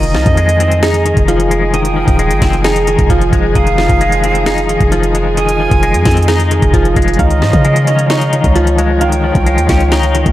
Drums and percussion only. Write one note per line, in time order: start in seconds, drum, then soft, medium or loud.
0.03 closed hi-hat medium
0.15 snare medium
0.26 kick loud
0.26 closed hi-hat medium
0.37 closed hi-hat medium
0.49 closed hi-hat medium
0.60 closed hi-hat medium
0.71 closed hi-hat soft
0.83 snare loud
0.83 closed hi-hat medium
0.94 closed hi-hat medium
1.06 closed hi-hat medium
1.17 kick loud
1.17 closed hi-hat medium
1.28 closed hi-hat medium
1.40 closed hi-hat medium
1.51 closed hi-hat medium
1.74 closed hi-hat medium
1.85 closed hi-hat medium
2.08 kick loud
2.08 closed hi-hat medium
2.19 closed hi-hat medium
2.31 closed hi-hat medium
2.42 kick loud
2.42 snare loud
2.42 closed hi-hat medium
2.42 open hi-hat medium
2.53 closed hi-hat soft
2.64 snare loud
2.64 closed hi-hat medium
2.76 closed hi-hat medium
2.87 closed hi-hat medium
2.99 kick loud
2.99 closed hi-hat medium
3.10 kick loud
3.10 closed hi-hat medium
3.21 closed hi-hat medium
3.33 kick loud
3.33 closed hi-hat medium
3.55 kick loud
3.55 closed hi-hat medium
3.67 closed hi-hat medium
3.78 snare loud
3.89 kick loud
3.89 closed hi-hat medium
4.01 closed hi-hat medium
4.12 closed hi-hat medium
4.24 closed hi-hat medium
4.35 closed hi-hat soft
4.46 snare loud
4.46 closed hi-hat medium
4.58 closed hi-hat medium
4.69 closed hi-hat medium
4.81 kick loud
4.81 closed hi-hat medium
4.92 closed hi-hat medium
5.03 closed hi-hat medium
5.15 closed hi-hat medium
5.37 closed hi-hat medium
5.49 closed hi-hat medium
5.71 kick loud
5.71 closed hi-hat medium
5.83 closed hi-hat medium
5.94 closed hi-hat medium
6.05 kick loud
6.05 snare loud
6.05 closed hi-hat medium
6.05 open hi-hat medium
6.11 closed hi-hat medium
6.17 closed hi-hat medium
6.22 closed hi-hat soft
6.28 snare loud
6.28 closed hi-hat medium
6.40 closed hi-hat medium
6.51 closed hi-hat medium
6.62 kick loud
6.62 closed hi-hat medium
6.74 kick loud
6.74 closed hi-hat medium
6.85 closed hi-hat medium
6.96 kick loud
6.96 closed hi-hat medium
7.02 closed hi-hat medium
7.08 closed hi-hat medium
7.14 closed hi-hat soft
7.19 kick loud
7.19 closed hi-hat medium
7.30 closed hi-hat medium
7.42 snare loud
7.53 kick loud
7.53 closed hi-hat medium
7.65 closed hi-hat medium
7.76 closed hi-hat medium
7.87 closed hi-hat medium
7.99 closed hi-hat soft
8.10 snare loud
8.10 closed hi-hat medium
8.21 closed hi-hat medium
8.33 closed hi-hat medium
8.44 kick medium
8.44 closed hi-hat medium
8.56 closed hi-hat medium
8.67 closed hi-hat medium
8.78 closed hi-hat medium
9.01 closed hi-hat medium
9.12 closed hi-hat medium
9.35 kick loud
9.35 closed hi-hat medium
9.46 closed hi-hat medium
9.58 closed hi-hat medium
9.69 kick loud
9.69 snare loud
9.69 closed hi-hat medium
9.69 open hi-hat medium
9.80 closed hi-hat soft
9.92 snare loud
9.92 closed hi-hat medium
10.03 closed hi-hat medium
10.15 closed hi-hat medium
10.26 kick loud
10.26 closed hi-hat medium